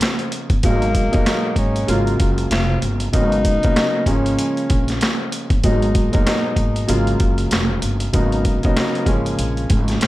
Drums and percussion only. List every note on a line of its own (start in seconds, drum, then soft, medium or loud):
0.01 cross-stick medium
0.01 snare loud
0.01 closed hi-hat medium
0.19 closed hi-hat soft
0.32 closed hi-hat medium
0.50 kick medium
0.50 closed hi-hat soft
0.63 kick loud
0.63 closed hi-hat medium
0.82 closed hi-hat soft
0.95 kick medium
0.95 closed hi-hat medium
1.13 kick loud
1.13 closed hi-hat medium
1.26 cross-stick loud
1.26 snare loud
1.26 closed hi-hat loud
1.56 kick medium
1.56 closed hi-hat medium
1.76 closed hi-hat soft
1.88 closed hi-hat medium
2.07 closed hi-hat soft
2.20 kick loud
2.20 closed hi-hat medium
2.38 closed hi-hat medium
2.51 cross-stick medium
2.51 snare loud
2.51 closed hi-hat medium
2.82 closed hi-hat medium
3.00 closed hi-hat soft
3.13 kick loud
3.13 closed hi-hat medium
3.32 closed hi-hat soft
3.45 kick medium
3.45 closed hi-hat medium
3.63 kick loud
3.63 closed hi-hat medium
3.76 cross-stick loud
3.76 snare loud
3.76 closed hi-hat loud
4.06 kick medium
4.06 closed hi-hat medium
4.26 closed hi-hat medium
4.39 closed hi-hat loud
4.57 closed hi-hat soft
4.70 kick loud
4.70 closed hi-hat medium
4.88 snare soft
4.88 closed hi-hat medium
5.01 cross-stick medium
5.01 snare loud
5.01 closed hi-hat medium
5.32 closed hi-hat medium
5.50 kick medium
5.50 closed hi-hat soft
5.64 kick loud
5.64 closed hi-hat medium
5.82 closed hi-hat soft
5.95 kick medium
5.95 closed hi-hat medium
6.13 kick loud
6.13 closed hi-hat medium
6.27 cross-stick loud
6.27 snare loud
6.27 closed hi-hat loud
6.56 kick medium
6.56 closed hi-hat medium
6.76 closed hi-hat medium
6.89 closed hi-hat loud
7.07 closed hi-hat soft
7.20 kick loud
7.20 closed hi-hat medium
7.38 closed hi-hat medium
7.51 cross-stick medium
7.51 snare loud
7.51 closed hi-hat medium
7.82 closed hi-hat medium
8.00 closed hi-hat soft
8.14 kick loud
8.14 closed hi-hat medium
8.32 closed hi-hat soft
8.45 kick medium
8.45 closed hi-hat medium
8.63 kick loud
8.63 closed hi-hat medium
8.77 cross-stick medium
8.77 snare loud
8.77 closed hi-hat loud
8.95 closed hi-hat soft
9.06 kick medium
9.06 closed hi-hat medium
9.26 closed hi-hat medium
9.39 closed hi-hat loud
9.57 closed hi-hat soft
9.70 kick loud
9.70 closed hi-hat medium
9.88 snare soft
9.88 closed hi-hat medium
10.01 cross-stick medium
10.01 snare loud
10.01 closed hi-hat medium